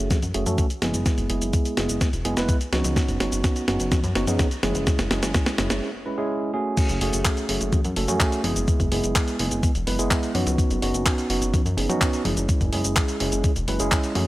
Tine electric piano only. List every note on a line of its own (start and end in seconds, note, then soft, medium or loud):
0.00 0.17 A3 medium
0.00 0.17 C#4 medium
0.00 0.17 F#4 medium
0.00 0.17 G#4 medium
0.34 0.44 A3 loud
0.34 0.44 C#4 medium
0.34 0.44 F#4 medium
0.34 0.44 G#4 loud
0.46 0.65 A3 medium
0.46 0.65 C#4 medium
0.46 0.65 F#4 medium
0.46 0.65 A4 loud
0.82 1.27 G#3 medium
0.82 1.27 B3 medium
0.82 1.27 E4 medium
0.82 1.27 G#4 loud
1.30 1.75 G#3 medium
1.30 1.75 B3 medium
1.30 1.75 E4 medium
1.30 1.75 G#4 medium
1.77 2.08 G#3 medium
1.77 2.08 B3 medium
1.77 2.08 E4 medium
1.77 2.08 G#4 medium
2.25 2.34 G#3 loud
2.25 2.34 B3 medium
2.25 2.34 E4 medium
2.25 2.34 G#4 loud
2.37 2.56 G#3 medium
2.37 2.56 B3 medium
2.37 2.56 E4 medium
2.37 2.56 B4 loud
2.73 3.17 B3 medium
2.73 3.17 C#4 medium
2.73 3.17 D#4 medium
2.73 3.17 F#4 loud
3.20 3.65 B3 medium
3.20 3.65 C#4 medium
3.20 3.65 D#4 medium
3.20 3.65 F#4 medium
3.68 3.98 B3 medium
3.68 3.98 C#4 medium
3.68 3.98 D#4 medium
3.68 3.98 F#4 medium
4.15 4.25 B3 loud
4.15 4.25 C#4 medium
4.15 4.25 D#4 medium
4.15 4.25 F#4 loud
4.27 4.47 B3 medium
4.27 4.47 C#4 medium
4.27 4.47 D#4 medium
4.27 4.46 G#4 loud
4.63 5.08 G#3 medium
4.63 5.08 C#4 medium
4.63 5.08 E4 medium
4.63 5.08 G#4 loud
5.11 5.55 G#3 medium
5.11 5.55 C#4 medium
5.11 5.55 E4 medium
5.11 5.55 G#4 medium
5.58 5.89 G#3 medium
5.58 5.89 C#4 medium
5.58 5.89 E4 medium
5.58 5.89 G#4 medium
6.06 6.16 G#3 medium
6.06 6.16 C#4 medium
6.06 6.16 E4 medium
6.06 6.16 B4 medium
6.18 6.51 G#3 loud
6.18 6.51 C#4 medium
6.18 6.51 E4 medium
6.18 6.51 G#4 loud
6.54 6.98 A3 medium
6.54 6.98 C#4 medium
6.54 6.98 F#4 medium
6.54 6.98 G#4 medium
7.01 7.46 A3 medium
7.01 7.46 C#4 medium
7.01 7.46 F#4 medium
7.01 7.46 G#4 medium
7.49 7.79 A3 medium
7.49 7.79 C#4 medium
7.49 7.79 F#4 medium
7.49 7.79 G#4 medium
7.96 8.07 A3 medium
7.96 8.07 C#4 medium
7.96 8.07 F#4 medium
7.96 8.07 A4 medium
8.08 8.41 A3 loud
8.08 8.41 C#4 medium
8.08 8.41 F#4 medium
8.08 8.41 G#4 loud
8.44 8.89 G#3 medium
8.44 8.89 B3 medium
8.44 8.89 E4 medium
8.44 8.89 G#4 medium
8.92 9.36 G#3 medium
8.92 9.36 B3 medium
8.92 9.36 E4 medium
8.92 9.36 G#4 medium
9.39 9.70 G#3 medium
9.39 9.70 B3 medium
9.39 9.70 E4 medium
9.39 9.70 G#4 medium
9.87 9.97 G#3 medium
9.87 9.97 B3 medium
9.87 9.97 E4 medium
9.87 9.97 B4 medium
9.99 10.32 G#3 loud
9.99 10.32 B3 medium
9.99 10.32 E4 medium
9.99 10.32 G#4 loud
10.35 10.79 B3 medium
10.35 10.79 C#4 medium
10.35 10.79 D#4 medium
10.35 10.79 F#4 medium
10.82 11.27 B3 medium
10.82 11.27 C#4 medium
10.82 11.27 D#4 medium
10.82 11.27 F#4 medium
11.30 11.60 B3 medium
11.30 11.60 C#4 medium
11.30 11.60 D#4 medium
11.30 11.60 F#4 medium
11.77 11.88 B3 medium
11.77 11.88 C#4 medium
11.77 11.88 D#4 medium
11.77 11.88 G#4 medium
11.89 12.22 B3 loud
11.89 12.22 C#4 medium
11.89 12.22 D#4 medium
11.89 12.22 F#4 loud
12.25 12.70 G#3 medium
12.25 12.70 C#4 medium
12.25 12.70 E4 medium
12.25 12.70 G#4 medium
12.73 13.17 G#3 medium
12.73 13.17 C#4 medium
12.73 13.17 E4 medium
12.73 13.17 G#4 medium
13.20 13.51 G#3 medium
13.20 13.51 C#4 medium
13.20 13.51 E4 medium
13.20 13.51 G#4 medium
13.68 13.78 G#3 medium
13.68 13.78 C#4 medium
13.68 13.78 E4 medium
13.68 13.78 B4 medium
13.80 14.13 G#3 loud
13.80 14.13 C#4 medium
13.80 14.13 E4 medium
13.80 14.13 G#4 loud
14.15 14.27 A3 medium
14.15 14.27 C#4 medium
14.15 14.27 F#4 medium
14.15 14.27 G#4 medium